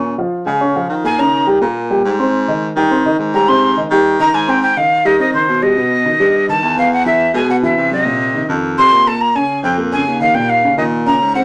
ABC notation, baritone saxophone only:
X:1
M:4/4
L:1/8
Q:1/4=210
K:Ab
V:1 name="Baritone saxophone" clef=bass
B,, z2 D,3 E,2- | E,3 B,,3 A,,2- | A,,3 E,3 A,,2- | A,,3 E,3 A,,2- |
A,, z2 E,3 _C,2- | _C,3 G,,3 _F,,2- | _F,,3 =B,,3 C,2- | C,3 F,,3 B,,2- |
B,, z2 F,,3 E,,2- | E,,3 B,,3 A,,2 |]